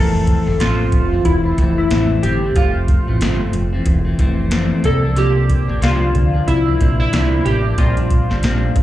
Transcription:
Already playing: F1 F2 E3 A3 C4 A4
0.27 kick, closed hi-hat
0.47 G1 E3 A3 C4
0.60 A1 F2 A3 C4 F4, snare, closed hi-hat
0.92 F1, kick, closed hi-hat
1.12 E3 A3 C4
1.25 E1 E4, kick, closed hi-hat
1.44 E3 A3 C4
1.57 F1 F2 E3 A3 C4, kick, closed hi-hat
1.78 E4
1.90 A1 F2 E3 A3 C4, snare, closed hi-hat
2.22 G1 F2 E3 A3 C4 G4, closed hi-hat
2.43 E3 A3 C4
2.56 F1 F2 A3 C4 F4, kick, closed hi-hat
2.88 kick, closed hi-hat
3.07 A1 E3 A3 C4
3.21 G1 F2 A3 C4, snare, closed hi-hat
3.53 F1, closed hi-hat
3.73 E3 A3 C4
3.86 E1, kick, closed hi-hat
4.05 E3 A3 C4
4.18 F1 F2 E3 A3 C4, kick, closed hi-hat
4.50 F2 E3 A3 C4, snare, closed hi-hat
4.83 C2 C3 F3 A#3 D4 A4, kick, closed hi-hat
5.03 F3 A#3 D4
5.16 C3 F3 A#3 D4 G4, closed hi-hat
5.50 kick, closed hi-hat
5.68 A#1 F3 A#3 D4
5.81 C2 C3 F3 A#3 D4 F4, snare, closed hi-hat
6.15 D2, kick, closed hi-hat
6.33 F3 A#3 D4
6.48 C2 E4, kick, closed hi-hat
6.66 F3 A#3 D4
6.79 A#1 C3 F3 A#3 D4, kick, closed hi-hat
7.00 E4
7.12 C2 C3 F3 A#3 D4, snare, closed hi-hat
7.44 A1 C3 F3 A#3 D4 G4, closed hi-hat
7.64 F3 A#3 D4
7.77 A#1 A#2 G3 C4 D4 F4, kick, closed hi-hat
7.97 G3 C4 D4, closed hi-hat
8.10 kick, closed hi-hat
8.30 G1 G3 C4 D4, snare
8.43 A#1 A#2 G3 C4 D4, snare, closed hi-hat
8.76 A1, kick, closed hi-hat

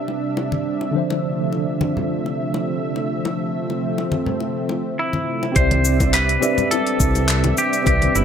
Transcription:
Already playing: C3 G3 C4 D4 G4 B4 D5 E5
0.08 high bongo
0.37 high bongo
0.52 high conga
0.81 high bongo
0.91 D3 F3 A3 D4
0.96 C5 E5
1.10 high bongo
1.52 high bongo
1.81 high bongo, high conga
1.97 low conga
2.26 high bongo
2.54 high bongo
2.96 high bongo
3.25 C4, high bongo
3.70 high bongo
3.98 high bongo
4.12 high conga
4.26 low conga
4.40 high bongo
4.69 high bongo
4.99 E4
5.13 high bongo, high conga
5.43 high bongo
5.52 C2 C3 G3 C4 D4 G4 C5 D5 E5, kick, closed hi-hat, cabasa
5.56 C5 D5 E5
5.71 closed hi-hat, high bongo, high conga
5.85 cabasa
6.00 kick, closed hi-hat, high bongo, cabasa
6.14 B4, clap, closed hi-hat, cabasa
6.29 closed hi-hat
6.40 C4 G4 B4 D5 E5, high bongo, cabasa
6.58 closed hi-hat, low conga, cabasa
6.71 A4, closed hi-hat, high bongo, cabasa
6.87 closed hi-hat
7.00 C2, kick, cabasa
7.15 closed hi-hat, high bongo, cabasa
7.28 clap, closed hi-hat, cabasa
7.44 closed hi-hat, high bongo, high conga
7.57 G4, cabasa
7.73 closed hi-hat, cabasa
7.82 C2 C4 G4 B4, kick, high bongo
7.87 G4 D5 E5, closed hi-hat, cabasa
8.02 closed hi-hat, high conga
8.15 G1 E4, high bongo, cabasa

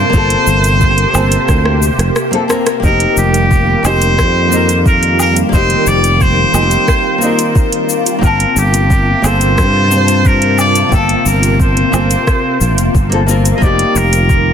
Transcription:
Already playing: C3 A#3 F4 C5 A5
0.10 A#3 C4 G4, cabasa
0.14 G1 F4 A4, kick
0.30 closed hi-hat
0.47 G1, cabasa
0.64 closed hi-hat, cabasa
0.81 kick, cabasa
0.98 closed hi-hat
1.13 G1 A#3 C4 F4 A4, cabasa, low woodblock
1.32 closed hi-hat, cabasa
1.49 D2, kick, cross-stick, cabasa
1.65 cross-stick
1.83 cabasa
1.98 F1, cross-stick, closed hi-hat, cabasa
2.16 cross-stick, cabasa
2.31 A#3 C4 F4 A4, closed hi-hat
2.48 A#3 C4 F4 A#4, cross-stick, cabasa
2.67 cross-stick, closed hi-hat, cabasa
2.80 F1 D#3 G3 A#3 C4 F4, kick, cabasa
2.84 D#4 G4 A#4
3.00 closed hi-hat
3.17 F1 G4, cabasa
3.34 closed hi-hat, cabasa
3.51 kick, cabasa
3.83 F1 A#3 C4 D#4 C5, cabasa, low woodblock
3.87 G4
4.02 closed hi-hat, cabasa
4.18 F2, kick, cross-stick, cabasa
4.48 A#3 C4
4.52 D#4 A#4, cabasa
4.69 closed hi-hat, cabasa
4.86 A#4, kick, cabasa
5.03 closed hi-hat
5.19 A#4, cabasa, low woodblock
5.37 closed hi-hat, cabasa
5.49 A#3 C4
5.53 F1 D#4 G4 C5, kick, cabasa
5.70 closed hi-hat
5.87 F1 D5, cabasa
6.04 closed hi-hat, cabasa
6.21 C5, kick, cabasa
6.52 F1 A#3 C4 D#4 G4, cabasa, low woodblock
6.71 closed hi-hat, cabasa
6.88 kick, cross-stick, cabasa
7.18 A#3 C4, cabasa
7.23 D#4 A#4
7.39 closed hi-hat, cabasa
7.56 kick, cabasa
7.72 closed hi-hat
7.90 cabasa
8.06 closed hi-hat, cabasa
8.19 A#3 C4
8.23 G1 C3 A#3 F4 A#4 A5, kick, cabasa
8.40 closed hi-hat
8.56 G1 G4, cabasa
8.74 closed hi-hat, cabasa
8.90 kick, cabasa
9.22 G1 A#3 C4 F4 C5, cabasa, low woodblock
9.26 A4
9.41 closed hi-hat, cabasa
9.58 G2, kick, cross-stick, cabasa
9.88 A#3 C4, cabasa
9.93 F4 C5
10.08 closed hi-hat, cabasa
10.25 A#4, kick, cabasa
10.42 closed hi-hat
10.59 D5, cabasa, low woodblock
10.75 closed hi-hat, cabasa
10.89 G1 A#3 C4, kick, cabasa
10.94 F4 A4 A5
11.09 closed hi-hat
11.26 G1 A#4, cabasa
11.43 closed hi-hat, cabasa
11.60 C5, kick, cabasa
11.77 closed hi-hat
11.92 G1 A#3 C4 F4 A4, cabasa, low woodblock
12.11 closed hi-hat, cabasa
12.27 kick, cross-stick, cabasa
12.61 A#1, cabasa
12.77 F1, closed hi-hat, cabasa
12.95 G1, kick, cabasa
13.10 A#3 C4 F4, closed hi-hat
13.14 A4
13.27 A#3 C4 F4 A#4, cabasa
13.45 closed hi-hat, cabasa
13.56 A#3 D#5
13.61 F1 D#3 G3 A#3 C4 D#4 D5, kick, cabasa
13.66 G4
13.79 closed hi-hat
13.95 F1 A#4, cabasa
14.13 closed hi-hat, cabasa
14.29 kick, cabasa

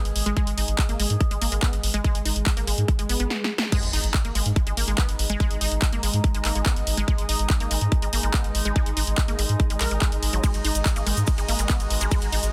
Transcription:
Already playing: G#3 G#4
0.05 G#1, closed hi-hat
0.16 G#1, open hi-hat
0.26 G#1 G#3, closed hi-hat
0.37 G#3, kick, closed hi-hat
0.47 G#1, closed hi-hat
0.58 G#1 D#4, open hi-hat
0.68 G#1, closed hi-hat
0.79 kick, clap, closed hi-hat
0.89 G#1 A#3, closed hi-hat
1.00 G#1 G#3, open hi-hat
1.10 G#2, closed hi-hat
1.21 kick, closed hi-hat
1.31 G#1 G#3, closed hi-hat
1.41 G#1 A#3, open hi-hat
1.52 G#1 G#3, closed hi-hat
1.62 B3, kick, clap, closed hi-hat
1.73 G#1, closed hi-hat
1.83 G#1, open hi-hat
1.94 G#1 G#3, closed hi-hat
2.04 G#3, kick, closed hi-hat
2.15 G#1, closed hi-hat
2.25 G#1 D#4, open hi-hat
2.36 G#1, closed hi-hat
2.46 kick, clap, closed hi-hat
2.57 G#1 A#3, closed hi-hat
2.67 G#1 G#3, open hi-hat
2.78 G#2, closed hi-hat
2.88 kick, closed hi-hat, swell
2.99 G#1 G#3, closed hi-hat
3.09 G#1 B3, open hi-hat
3.20 G#1 B3, closed hi-hat
3.30 snare
3.44 snare
3.58 snare, zap
3.72 G#3 D#4 G#4, kick, closed hi-hat, crash, sub drop
3.83 G#1, closed hi-hat
3.93 G#1 D#4, open hi-hat
4.04 G#1, closed hi-hat
4.11 D#5 A#5, kick, clap, closed hi-hat
4.25 G#1 A#3, closed hi-hat
4.35 G#1 G#3, open hi-hat
4.46 G#2, closed hi-hat
4.56 kick, closed hi-hat
4.67 G#1 G#3, closed hi-hat
4.77 G#1 A#3, open hi-hat
4.88 G#1 G#3, closed hi-hat
4.98 B3, kick, clap, closed hi-hat
5.09 G#1, closed hi-hat
5.19 G#1, open hi-hat
5.30 G#1 G#3, closed hi-hat
5.40 G#3, kick, closed hi-hat
5.51 G#1, closed hi-hat
5.61 G#1 D#4, open hi-hat
5.72 G#1, closed hi-hat
5.82 kick, clap, closed hi-hat
5.93 G#1 A#3, closed hi-hat
6.03 G#1 G#3, open hi-hat
6.14 G#2, closed hi-hat
6.24 kick, closed hi-hat
6.34 G#1 G#3, closed hi-hat
6.45 G#1 A#3, clap, open hi-hat
6.55 G#1 G#3, closed hi-hat
6.66 B3, kick, clap, closed hi-hat
6.76 G#1, closed hi-hat
6.87 G#1, open hi-hat
6.97 G#1 G#3, closed hi-hat
7.08 G#3, kick, closed hi-hat
7.18 G#1, closed hi-hat
7.29 G#1 D#4, open hi-hat
7.39 G#1, closed hi-hat
7.50 kick, clap, closed hi-hat
7.60 G#1 A#3, closed hi-hat
7.71 G#1 G#3, open hi-hat
7.81 G#2, closed hi-hat
7.92 kick, closed hi-hat
8.02 G#1 G#3, closed hi-hat
8.13 G#1 A#3, open hi-hat
8.23 G#1 G#3, closed hi-hat
8.34 B3, kick, clap, closed hi-hat
8.44 G#1, closed hi-hat
8.55 G#1, open hi-hat
8.65 G#1 G#3, closed hi-hat
8.76 G#3, kick, closed hi-hat
8.86 G#1, closed hi-hat
8.97 G#1 D#4, open hi-hat
9.07 G#1, closed hi-hat
9.18 kick, clap, closed hi-hat
9.28 G#1 A#3, closed hi-hat
9.39 G#1 G#3, open hi-hat
9.49 G#2, closed hi-hat
9.60 kick, closed hi-hat
9.70 G#1 G#3, closed hi-hat
9.81 A#1 A#4, clap, open hi-hat
9.91 G#1 G#3, closed hi-hat
10.02 G#3, kick, clap, closed hi-hat
10.12 G#1, closed hi-hat
10.23 G#1, open hi-hat
10.33 G#1 F#3, closed hi-hat
10.44 G#3 F#4, kick, closed hi-hat, ride, cabasa
10.54 G#1, closed hi-hat, cabasa
10.65 G#1 D#4, open hi-hat
10.75 G#1, closed hi-hat, cabasa
10.86 kick, clap, closed hi-hat, ride, cabasa
10.96 G#1 A#3, closed hi-hat, cabasa
11.07 G#1 G#3, open hi-hat
11.17 G#2, closed hi-hat, cabasa
11.27 kick, closed hi-hat, ride, cabasa
11.38 G#1 G#3, closed hi-hat, cabasa
11.48 G#1 A#3, open hi-hat
11.59 G#1 G#3, closed hi-hat, cabasa
11.69 B3, kick, clap, closed hi-hat, ride, cabasa
11.80 G#1, closed hi-hat, cabasa
11.90 G#1, open hi-hat
12.01 G#1 G#3, closed hi-hat, cabasa
12.11 G#3, kick, closed hi-hat, ride, cabasa
12.21 G#1, closed hi-hat, cabasa
12.32 G#1 D#4, open hi-hat
12.43 G#1, closed hi-hat, cabasa

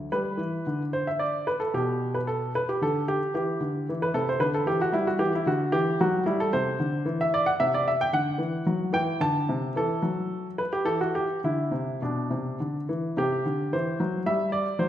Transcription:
Already playing: F#3 A3
0.12 G3 B4
0.37 E3
0.67 D3
0.93 C5
1.07 E5
1.19 D5
1.47 B4
1.60 A4
1.74 B2 G4
2.14 B4
2.27 A4
2.55 B4
2.69 G4
2.82 D3 A4
3.08 G4
3.34 E3 G4
3.61 D3
3.89 E3
4.02 B4
4.14 C3 A4
4.29 C5
4.40 D3 B4
4.54 A4
4.66 E3 G4
4.81 F#4
4.92 G3 E4
5.07 F#4
5.19 E3 G4
5.35 E4
5.46 D3 F#4
5.72 E3 G4
6.01 F#3 F#4
6.26 G3 E4
6.40 A4
6.53 C3 C5
6.80 D3
7.06 E3
7.21 E5
7.34 D5
7.46 F#5
7.60 C3 E5
7.74 D5
7.88 E5
8.01 G5
8.13 D3 F#5
8.38 E3
8.66 F#3
8.93 E3 G5
9.20 D3 A5
9.49 C3
9.76 E3 A4
10.02 F#3
10.58 B4
10.73 G4
10.85 E3 A4
11.01 F#4
11.15 G4
11.44 D3 E4
11.71 C3
12.02 B2 D4
12.30 C3
12.60 D3
12.89 E3
13.17 C3 G4
13.45 D3
13.73 E3 C5
14.00 F#3
14.26 G3 E5
14.52 D5
14.79 F#3 C5

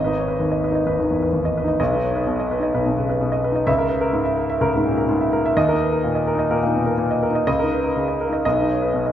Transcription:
Already playing: G#1 D#5
0.04 D#4 B4
0.16 C#5
0.28 B4
0.40 D#2
0.52 D#5
0.64 B4
0.71 D#4 D#5
0.87 D#2 B4
0.99 D#2 D#4
1.11 E2
1.22 B4
1.33 D#2
1.45 D#5
1.57 B4
1.64 D#4 D#5
1.80 B1 D#5
1.92 B4
1.96 D#4
2.03 C#5
2.16 B4
2.27 B2
2.40 D#5
2.51 B4
2.60 D#4 D#5
2.74 B1 B4
2.86 B2
2.90 B2
2.98 C#3
3.09 B4
3.21 B2
3.32 D#5
3.44 B4
3.52 D#4 D#5
3.67 C#2 E5
3.78 A#4
3.89 B4
4.01 A#4
4.13 G#2
4.25 E5
4.37 A#4
4.50 E5
4.61 C#2 A#4
4.73 G#2
4.85 A#2
4.97 A#4
5.09 G#2
5.21 E5
5.33 A#4
5.46 E5
5.57 D#2 D#5
5.69 D#4 A#4
5.81 B4
5.92 A#4
6.04 A#2
6.15 D#5
6.27 A#4
6.35 D#4 D#5
6.51 A#2 A#4
6.63 A#2 D#4
6.74 B2
6.86 A#4
6.98 A#2
7.11 D#5
7.23 A#4
7.31 D#4
7.35 D#5
7.47 C#2 D#5
7.59 A#4
7.63 D#4
7.71 B4
7.84 A#4
7.96 C#3
8.08 D#5
8.21 A#4
8.29 D#4 D#5
8.45 B1 D#5
8.58 B4
8.62 D#4
8.70 C#5
8.82 B4
8.94 B2
9.06 D#5

